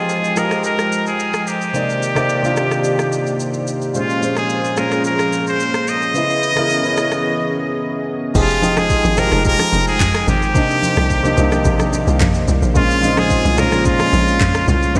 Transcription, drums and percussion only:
0.09 shaker medium
0.24 shaker medium
0.36 cross-stick medium
0.36 shaker medium
0.51 cross-stick medium
0.51 shaker soft
0.64 shaker medium
0.79 cross-stick medium
0.79 shaker soft
0.92 shaker medium
1.07 shaker soft
1.20 shaker medium
1.34 cross-stick medium
1.34 shaker soft
1.47 shaker medium
1.62 shaker soft
1.74 shaker medium
1.90 shaker soft
2.03 shaker medium
2.16 cross-stick medium
2.16 shaker soft
2.29 shaker medium
2.44 shaker medium
2.57 cross-stick medium
2.57 shaker medium
2.71 cross-stick medium
2.71 shaker soft
2.84 shaker medium
2.99 cross-stick medium
2.99 shaker medium
3.12 shaker medium
3.27 shaker soft
3.40 shaker medium
3.54 shaker soft
3.67 shaker medium
3.82 shaker soft
3.95 shaker medium
4.10 shaker soft
4.23 shaker medium
4.36 cross-stick medium
4.36 shaker soft
4.50 shaker medium
4.65 shaker medium
4.77 cross-stick medium
4.77 shaker medium
4.92 cross-stick medium
4.92 shaker soft
5.04 shaker medium
5.19 cross-stick medium
5.19 shaker soft
5.33 shaker medium
5.47 shaker soft
5.60 shaker medium
5.74 cross-stick medium
5.74 shaker medium
5.88 shaker medium
6.02 shaker soft
6.15 shaker medium
6.30 shaker soft
6.43 shaker medium
6.57 cross-stick medium
6.57 shaker soft
6.70 shaker medium
6.85 shaker medium
6.97 cross-stick medium
6.97 shaker medium
7.12 cross-stick medium
7.12 shaker soft
8.35 kick loud
8.35 crash loud
8.35 shaker medium
8.50 shaker medium
8.62 high conga medium
8.62 shaker medium
8.77 cross-stick loud
8.77 high conga medium
8.77 shaker medium
8.90 kick loud
8.90 shaker medium
9.04 high conga medium
9.04 shaker medium
9.17 cross-stick loud
9.17 low conga medium
9.17 shaker medium
9.32 cross-stick medium
9.32 high conga medium
9.32 shaker medium
9.45 kick loud
9.45 low conga medium
9.45 shaker medium
9.59 cross-stick medium
9.59 high conga medium
9.59 shaker medium
9.73 high conga medium
9.73 shaker medium
9.87 shaker medium
10.00 kick loud
10.00 clap loud
10.00 mid tom medium
10.00 high conga medium
10.00 shaker medium
10.14 cross-stick loud
10.14 shaker medium
10.28 low conga medium
10.28 shaker medium
10.42 shaker soft
10.55 kick loud
10.55 shaker medium
10.70 shaker soft
10.83 high conga medium
10.83 shaker medium
10.97 cross-stick loud
10.97 high conga medium
10.97 shaker medium
11.10 kick loud
11.10 shaker medium
11.24 high conga medium
11.24 shaker medium
11.37 low conga medium
11.37 shaker medium
11.52 cross-stick loud
11.52 high conga medium
11.52 shaker medium
11.65 kick loud
11.65 low conga medium
11.65 shaker medium
11.79 cross-stick loud
11.79 high conga medium
11.79 shaker medium
11.93 high conga medium
11.93 shaker medium
12.08 shaker medium
12.20 kick loud
12.20 clap loud
12.20 mid tom medium
12.20 high conga medium
12.20 shaker medium
12.34 shaker medium
12.48 low conga medium
12.48 shaker medium
12.62 shaker medium
12.75 kick loud
12.75 shaker medium
12.91 shaker soft
13.03 high conga medium
13.03 shaker medium
13.17 cross-stick medium
13.17 high conga medium
13.17 shaker soft
13.30 kick loud
13.30 shaker medium
13.45 high conga medium
13.45 shaker medium
13.57 cross-stick loud
13.57 low conga medium
13.57 shaker medium
13.72 cross-stick medium
13.72 high conga medium
13.72 shaker medium
13.85 kick loud
13.85 low conga medium
13.85 shaker medium
13.99 cross-stick medium
13.99 high conga medium
13.99 shaker medium
14.13 high conga medium
14.13 shaker medium
14.28 shaker medium
14.41 kick loud
14.41 clap medium
14.41 mid tom medium
14.41 high conga medium
14.41 shaker medium
14.55 cross-stick loud
14.55 shaker medium
14.68 low conga medium
14.68 shaker medium
14.83 shaker medium
14.95 kick loud
14.95 low conga medium
14.95 shaker medium

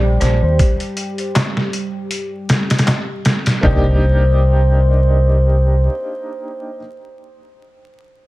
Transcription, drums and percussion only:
0.21 snare medium
0.21 closed hi-hat medium
0.59 kick loud
0.59 closed hi-hat medium
0.80 closed hi-hat soft
0.97 closed hi-hat medium
1.18 closed hi-hat soft
1.35 snare loud
1.35 closed hi-hat medium
1.35 darbuka tek medium
1.57 snare soft
1.73 closed hi-hat medium
2.11 closed hi-hat medium
2.49 snare loud
2.49 closed hi-hat medium
2.70 snare medium
2.70 closed hi-hat medium
2.79 snare medium
2.79 closed hi-hat medium
2.87 snare loud
2.87 closed hi-hat medium
2.87 darbuka tek medium
3.25 snare loud
3.25 closed hi-hat medium
3.46 snare loud
3.46 closed hi-hat medium
3.63 kick loud
3.63 floor tom loud

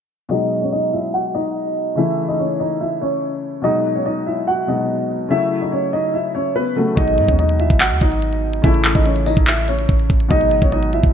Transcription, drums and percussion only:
6.97 kick loud
6.97 closed hi-hat medium
7.08 closed hi-hat medium
7.18 closed hi-hat medium
7.29 kick medium
7.29 closed hi-hat medium
7.39 closed hi-hat medium
7.49 closed hi-hat medium
7.60 closed hi-hat medium
7.70 kick loud
7.80 clap loud
7.80 closed hi-hat medium
7.91 closed hi-hat medium
8.01 kick loud
8.01 closed hi-hat medium
8.12 closed hi-hat medium
8.22 closed hi-hat medium
8.33 closed hi-hat soft
8.53 closed hi-hat medium
8.64 kick loud
8.64 closed hi-hat medium
8.74 closed hi-hat medium
8.85 clap loud
8.85 closed hi-hat medium
8.95 kick medium
8.95 closed hi-hat medium
9.06 closed hi-hat medium
9.16 closed hi-hat medium
9.26 open hi-hat medium
9.37 kick loud
9.47 clap loud
9.47 closed hi-hat medium
9.58 closed hi-hat medium
9.68 closed hi-hat medium
9.79 closed hi-hat medium
9.89 kick loud
9.89 closed hi-hat medium
9.99 closed hi-hat soft
10.10 kick medium
10.20 closed hi-hat medium
10.31 kick loud
10.31 closed hi-hat medium
10.41 closed hi-hat medium
10.51 closed hi-hat medium
10.62 kick loud
10.62 closed hi-hat medium
10.72 closed hi-hat medium
10.83 closed hi-hat medium
10.93 closed hi-hat medium
11.04 kick medium

